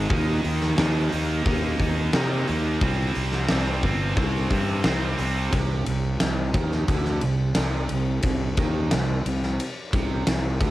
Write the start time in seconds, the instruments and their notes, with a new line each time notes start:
0.10 fingered electric bass D#2, overdriven electric guitar D#3 A#3 D#4, kick, open hi-hat
0.44 fingered electric bass D#2, open hi-hat
0.61 snare
0.78 fingered electric bass D#2, overdriven electric guitar D#3 A#3 D#4, snare, open hi-hat
1.12 fingered electric bass D#2, overdriven electric guitar D#3 A#3 D#4, open hi-hat
1.45 fingered electric bass D#2, overdriven electric guitar D#3 A#3 D#4, kick, open hi-hat
1.79 fingered electric bass D#2, kick, open hi-hat
2.13 fingered electric bass C3, overdriven electric guitar D#3 A#3 D#4, snare, open hi-hat
2.47 fingered electric bass D#2, overdriven electric guitar D#3 A#3 D#4, open hi-hat
2.81 fingered electric bass C2, overdriven electric guitar C3 G3 C4, kick, open hi-hat
3.15 fingered electric bass C2, open hi-hat
3.32 snare
3.49 fingered electric bass C2, overdriven electric guitar C3 G3 C4, snare, open hi-hat
3.83 fingered electric bass G1, overdriven electric guitar C3 G3 C4, kick, open hi-hat
4.17 fingered electric bass C2, overdriven electric guitar C3 G3 C4, kick, open hi-hat
4.50 fingered electric bass G2, kick, open hi-hat
4.84 fingered electric bass C2, overdriven electric guitar C3 G3 C4, snare, open hi-hat
5.18 fingered electric bass C2, overdriven electric guitar C3 G3 C4, open hi-hat
5.53 fingered electric bass C2, overdriven electric guitar C3, kick, ride
5.86 fingered electric bass C2, overdriven electric guitar C3, ride
6.20 fingered electric bass C2, overdriven electric guitar C3, snare, ride
6.54 fingered electric bass D#2, overdriven electric guitar D#3, kick, ride
6.71 snare
6.88 fingered electric bass D2, overdriven electric guitar D3, kick, ride
7.05 snare
7.21 fingered electric bass C2, overdriven electric guitar C3, ride
7.55 fingered electric bass C2, overdriven electric guitar C3, snare, ride
7.89 fingered electric bass C2, overdriven electric guitar C3, ride
8.22 fingered electric bass C2, overdriven electric guitar C3, kick, ride
8.57 fingered electric bass D#2, overdriven electric guitar D#3, kick, ride
8.91 fingered electric bass C2, overdriven electric guitar C3, snare, ride
9.26 fingered electric bass C2, overdriven electric guitar C3, ride
9.43 snare
9.60 ride
9.93 fingered electric bass C2, overdriven electric guitar C3, kick, ride
10.27 fingered electric bass C2, overdriven electric guitar C3, snare, ride
10.60 fingered electric bass D2, overdriven electric guitar D3, kick, ride